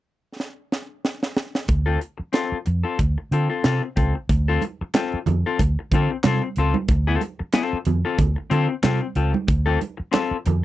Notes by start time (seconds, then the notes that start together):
0.40 snare
0.72 snare
1.05 snare
1.23 snare
1.37 snare
1.55 snare
1.68 D2, muted clean electric guitar stroke, kick, closed hi-hat
1.86 C4 F4 A4
2.00 muted clean electric guitar stroke, closed hi-hat
2.18 muted clean electric guitar stroke, muted fingered electric bass stroke
2.33 C4 F4 A4, snare, closed hi-hat
2.52 muted fingered electric bass stroke
2.66 F2, muted clean electric guitar stroke, closed hi-hat
2.83 C4 F4 A4
2.99 D2, muted clean electric guitar stroke, kick, closed hi-hat
3.18 muted clean electric guitar stroke
3.31 D3 C4 F4 A4, closed hi-hat
3.50 C4 F4 A4
3.64 C3 C4 F4 A4, snare, closed hi-hat
3.83 muted clean electric guitar stroke
3.96 C#2 C4 F4 A4, kick, closed hi-hat
4.15 muted clean electric guitar stroke
4.29 D2, muted clean electric guitar stroke, kick, closed hi-hat, muted conga
4.48 C4 F4 A4
4.62 closed hi-hat, muted conga
4.81 muted fingered electric bass stroke, muted clean electric guitar stroke
4.94 C4 F4 A4, snare, clap, closed hi-hat, high conga
5.14 muted fingered electric bass stroke
5.26 F2, muted clean electric guitar stroke, closed hi-hat, low conga
5.46 C4 F4 A4
5.59 D2, muted clean electric guitar stroke, kick, closed hi-hat, muted conga
5.79 muted clean electric guitar stroke
5.91 D3 C4 F4 A4, kick, closed hi-hat, muted conga
6.12 muted clean electric guitar stroke
6.24 C3 C4 F4 A4, snare, clap, closed hi-hat, high conga
6.43 muted clean electric guitar stroke
6.56 C#2 C4 F4 A4, closed hi-hat
6.74 muted clean electric guitar stroke, high conga
6.88 D2, muted clean electric guitar stroke, kick, closed hi-hat, muted conga
7.07 C4 F4 A4
7.21 muted clean electric guitar stroke, closed hi-hat, muted conga
7.39 muted clean electric guitar stroke, muted fingered electric bass stroke
7.53 C4 F4 A4, snare, clap, closed hi-hat, high conga
7.73 muted fingered electric bass stroke
7.85 F2, muted clean electric guitar stroke, closed hi-hat, low conga
8.05 C4 F4 A4
8.18 D2, kick, closed hi-hat, muted conga, low conga
8.36 muted clean electric guitar stroke
8.50 D3 C4 F4 A4, closed hi-hat, muted conga
8.69 muted clean electric guitar stroke
8.83 C3 C4 F4 A4, snare, clap, closed hi-hat, high conga
9.01 muted clean electric guitar stroke
9.15 C#2 C4 F4 A4, closed hi-hat
9.33 muted clean electric guitar stroke, high conga
9.47 D2, muted clean electric guitar stroke, kick, closed hi-hat, muted conga
9.66 C4 F4 A4
9.80 muted clean electric guitar stroke, closed hi-hat, muted conga
9.97 muted clean electric guitar stroke, muted fingered electric bass stroke
10.12 C4 F4 A4, snare, clap, closed hi-hat, high conga
10.31 muted fingered electric bass stroke
10.46 F2, muted clean electric guitar stroke, closed hi-hat, low conga